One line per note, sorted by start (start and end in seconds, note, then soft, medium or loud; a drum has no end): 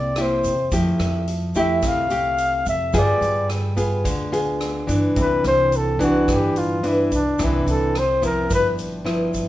0.00 0.40 C2 medium
0.00 0.69 C3 medium
0.00 0.12 A#3 medium
0.00 0.12 E4 medium
0.00 0.12 G4 medium
0.00 0.23 D5 medium
0.16 0.52 A#3 medium
0.16 0.53 E4 medium
0.16 0.53 G4 medium
0.16 cross-stick medium
0.16 closed hi-hat soft
0.21 0.74 C5 medium
0.44 0.70 E2 medium
0.44 kick soft
0.44 closed hi-hat soft
0.44 shaker medium
0.72 0.97 F2 medium
0.72 1.80 F3 medium
0.72 1.27 A3 medium
0.72 1.27 E4 medium
0.72 1.27 G4 medium
0.72 kick medium
0.72 closed hi-hat medium
0.72 shaker medium
0.99 1.79 F2 loud
0.99 cross-stick medium
0.99 closed hi-hat soft
0.99 shaker soft
1.27 closed hi-hat soft
1.55 2.06 A3 medium
1.55 2.07 E4 medium
1.55 2.07 G4 medium
1.55 1.89 E5 medium
1.55 kick soft
1.55 closed hi-hat soft
1.55 shaker medium
1.82 2.62 C2 medium
1.82 2.91 C3 medium
1.82 kick medium
1.82 cross-stick medium
1.82 closed hi-hat medium
1.82 shaker medium
1.87 2.68 F5 medium
2.10 2.89 A3 medium
2.10 2.90 G4 medium
2.10 closed hi-hat soft
2.10 shaker soft
2.38 closed hi-hat soft
2.38 shaker medium
2.66 2.92 F2 medium
2.66 2.99 E5 medium
2.66 kick soft
2.66 closed hi-hat soft
2.66 shaker medium
2.93 3.20 G2 loud
2.93 4.02 G3 medium
2.93 3.73 B3 medium
2.93 3.73 F4 medium
2.93 3.73 G#4 medium
2.93 kick medium
2.93 cross-stick medium
2.93 closed hi-hat medium
2.93 shaker medium
2.98 3.51 D5 medium
3.21 4.01 G2 loud
3.21 closed hi-hat soft
3.21 shaker soft
3.50 cross-stick medium
3.50 closed hi-hat soft
3.77 4.28 B3 medium
3.77 4.28 F4 medium
3.77 4.28 G#4 medium
3.77 kick soft
3.77 closed hi-hat soft
3.77 shaker medium
4.04 4.84 D2 medium
4.04 5.13 D3 medium
4.04 kick medium
4.04 closed hi-hat medium
4.04 shaker medium
4.32 4.84 B3 medium
4.32 4.84 F4 medium
4.32 4.84 G#4 medium
4.32 closed hi-hat soft
4.32 shaker soft
4.61 cross-stick medium
4.61 closed hi-hat soft
4.87 5.14 G2 medium
4.87 5.95 E3 medium
4.87 5.95 B3 medium
4.87 5.95 D4 medium
4.87 kick soft
4.87 closed hi-hat soft
4.87 shaker medium
5.16 5.42 C2 loud
5.16 6.25 C3 medium
5.16 kick medium
5.16 closed hi-hat medium
5.16 shaker medium
5.21 5.44 B4 medium
5.44 6.23 C2 loud
5.44 5.78 C5 loud
5.44 cross-stick medium
5.44 closed hi-hat soft
5.44 shaker soft
5.72 closed hi-hat soft
5.72 shaker medium
5.76 6.02 A4 medium
5.99 6.79 E3 medium
5.99 6.79 B3 medium
5.99 6.79 D4 medium
5.99 6.34 F#4 medium
5.99 kick soft
5.99 closed hi-hat soft
5.99 shaker medium
6.27 7.36 G2 medium
6.27 7.07 G2 medium
6.27 kick medium
6.27 cross-stick medium
6.27 closed hi-hat soft
6.27 shaker medium
6.33 6.60 G4 medium
6.56 6.89 F4 medium
6.56 closed hi-hat soft
6.56 shaker soft
6.83 7.19 E3 medium
6.83 7.19 B3 medium
6.83 7.19 D4 medium
6.83 closed hi-hat soft
6.88 7.13 E4 medium
7.11 7.37 C2 medium
7.11 7.46 D4 medium
7.11 kick soft
7.11 closed hi-hat soft
7.11 shaker medium
7.39 7.65 C2 loud
7.39 8.47 C3 medium
7.39 7.94 E3 medium
7.39 7.94 B3 medium
7.39 7.94 D4 medium
7.39 kick medium
7.39 cross-stick medium
7.39 closed hi-hat medium
7.39 shaker medium
7.44 7.69 E4 medium
7.66 8.46 C2 medium
7.66 8.00 A4 medium
7.66 closed hi-hat soft
7.66 shaker soft
7.95 8.24 C5 medium
7.95 cross-stick medium
7.95 closed hi-hat soft
8.22 9.01 F3 medium
8.22 9.01 B3 medium
8.22 9.02 E4 medium
8.22 8.50 A#4 medium
8.22 kick soft
8.22 closed hi-hat soft
8.22 shaker medium
8.50 9.30 G1 medium
8.50 9.48 G2 medium
8.50 kick medium
8.50 closed hi-hat medium
8.50 shaker medium
8.54 8.70 B4 medium
8.78 closed hi-hat soft
8.78 shaker soft
9.05 9.48 F3 medium
9.05 9.48 B3 medium
9.05 9.48 E4 medium
9.05 cross-stick medium
9.05 closed hi-hat soft
9.34 9.48 G1 medium
9.34 kick soft
9.34 closed hi-hat soft
9.34 shaker medium